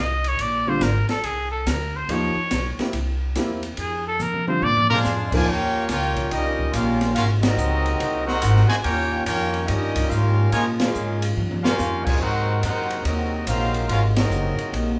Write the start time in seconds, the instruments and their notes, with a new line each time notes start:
Already playing: upright bass C2
0.00 trumpet D#5
0.24 trumpet C#5, ride
0.39 upright bass A#1, trumpet D5, ride
0.67 grand piano D3 G3 C4 F4, trumpet C5
0.81 upright bass G#1, trumpet A#4, snare, hi-hat pedal, ride
1.09 trumpet A4, muted upright bass stroke, snare, ride
1.23 upright bass C2, trumpet G#4, ride
1.51 trumpet A4
1.66 upright bass D2, trumpet A#4, snare, hi-hat pedal, ride
1.96 trumpet C5
2.09 upright bass D#2, grand piano F3 A#3 D#4 G4, trumpet C#5, ride
2.36 muted upright bass stroke
2.51 upright bass B1, snare, hi-hat pedal, ride
2.79 grand piano A#3 C4 E4 G4, muted upright bass stroke, snare, ride
2.93 upright bass C2, ride
3.35 upright bass E2, grand piano A#3 C4 E4 G4, snare, hi-hat pedal, ride
3.63 ride
3.77 upright bass F2, trumpet G#4, ride
4.07 trumpet A4
4.19 upright bass C3, trumpet A#4, hi-hat pedal, mid tom
4.34 mid tom
4.47 grand piano D3 G3 C4 F4, trumpet C5, mid tom
4.62 upright bass A#2, trumpet D5, floor tom
4.77 floor tom
4.89 trombone section G#3 D4 F4, trumpet section D4 G#4 C5 F5, trumpet A#4, floor tom
5.04 upright bass F2, snare, hi-hat pedal
5.31 trombone section D3 F3 G#3, grand piano F3 A#3 D#4 A#4, kick, crash
5.35 trumpet section F4 C5 D5 G#5
5.45 upright bass D#2, trombone section D#3 G3 A#3 C#4 F4 G4
5.49 trumpet section F4 A#4 C#5 G5
5.88 upright bass C#2, trombone section A#3 C#4 G4, trumpet section F4 A#4 C#5 G5, snare, hi-hat pedal, ride
6.16 kick, ride
6.29 upright bass C2, trombone section G3 A#3 D#4, trumpet section C#4 G4 A#4 D#5, ride
6.59 kick
6.71 upright bass A#1, trombone section A#3 C#4 F4, trumpet section G4 A#4 F5, hi-hat pedal, ride
6.75 trumpet section C#4
7.01 snare, ride
7.13 upright bass G#1, trumpet section C#4 F#4 A#4 F5, trombone section F4, ride
7.18 trombone section C3 G#3 A#3 F#4
7.40 trombone section F#3 C4 D#4, trumpet section C4 F#4 A#4 D#5, snare, ride
7.57 upright bass C#2, hi-hat pedal
7.86 ride
8.00 upright bass C2, ride
8.25 trombone section C4 D#4 F#4, trumpet section D#4 A#4 C5 F#5, snare
8.42 upright bass G#1, hi-hat pedal, ride
8.57 snare
8.68 trombone section C3 D#3 G#3, trumpet section F#4 C5 D#5 G#5, muted upright bass stroke, snare, ride
8.82 upright bass D#2, trombone section A#3 C#4 G4, trumpet section F4 A#4 C#5 G5, ride
8.87 trombone section D#3 G3 C#4 F4
9.24 upright bass F2, trombone section A#3 C#4 G4, trumpet section F4 A#4 C#5 G5, hi-hat pedal, ride
9.54 ride
9.67 upright bass G2, trombone section G3 A#3 D#4, trumpet section C#4 G4 A#4 D#5, ride
9.96 kick, ride
10.09 upright bass G#2, trombone section A#3 C#4 F4, trumpet section C#4 G4 A#4 F5, hi-hat pedal
10.52 upright bass A#2, trombone section C#3 F3 G#3 A#3, trumpet section F4 A#4 C#5 G#5, ride
10.80 trombone section G#3 C#4 F4, trumpet section C#4 G#4 A#4 F5, snare, ride
10.94 upright bass G#2, hi-hat pedal
11.22 ride
11.37 upright bass G2, trombone section D#3 G3 C#4, mid tom
11.51 mid tom
11.63 trombone section A#3 C#4 F4, trumpet section C#4 G4 A#4 F5, snare
11.79 upright bass F2, snare, hi-hat pedal
12.05 trombone section G#3, trumpet section F4 A#4 C#5 G#5, kick, crash
12.19 upright bass G#2, trombone section C3 F#3 G#3 A#3 C4 D#4 F#4, trumpet section D#4 A#4 C5 F#5
12.62 upright bass F#2, trombone section C4 D#4 F#4, trumpet section D#4 A#4 C5 F#5, hi-hat pedal, ride
12.90 ride
13.04 upright bass D#2, trombone section F#3 C4 D#4, trumpet section C4 F#4 A#4 D#5, ride
13.45 upright bass A#1, trombone section F#3 C4 F4, trumpet section D#4 A#4 C5 F5, hi-hat pedal, ride
13.74 ride
13.88 upright bass G#1, trumpet section C#4 F#4 A#4 F5, trombone section F4, ride
14.15 trombone section F#3 C4 D#4, trumpet section C4 F#4 A#4 D#5, snare, ride
14.30 upright bass F#1, hi-hat pedal
14.59 muted upright bass stroke, ride
14.73 upright bass A#1, ride